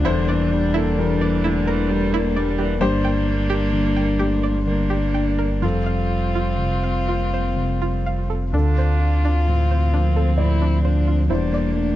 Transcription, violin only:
Already playing: D4
2.83 D4
4.65 D4
5.63 F4
8.53 F4
10.39 E4
10.83 D4
11.30 D4

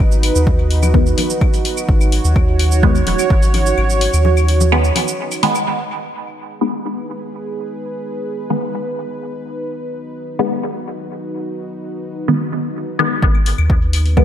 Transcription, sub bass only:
0.00 G#1
0.35 D#2
1.89 G#1
2.24 D#2
3.07 D#1
3.30 G#1
3.78 G#1
4.13 D#2
13.23 G#1
13.58 D#2

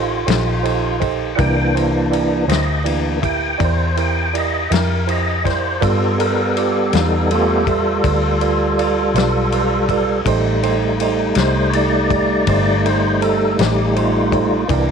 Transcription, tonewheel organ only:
Already playing: F4
1.35 E3 A#3 F#5
1.39 D4 G5
2.49 D#5
2.85 E3 A#3 D4
3.25 G5
3.64 C5
4.00 G5
4.38 D#5
4.73 A#4
5.09 D#5
5.46 C5
5.81 G3 B3 F4 A4
6.20 A#4
6.58 G4
6.96 D#4
7.32 A3 B3 F4 G4
7.69 F4
10.25 G3 A3 D#4
11.39 C5
11.70 C#5
11.74 D5
12.86 C5
13.22 A4
13.59 G4
13.97 F4
14.68 E3 A#3 D4

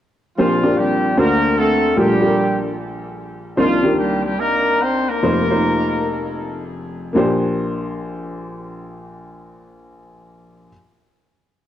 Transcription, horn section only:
0.38 F3 C4 D4 F4
0.78 G3 C4 D4 G4
1.18 A#3 F#4 A#4
1.57 A3 C4 F#4 A4
1.97 G3 D4 G4
3.57 F3 A#3 D4 F4
3.98 G3 G4
4.25 G3 G4
4.39 A#3 D4 D#4 A#4
4.82 C4 C5
5.08 A#3 D#4 A#4

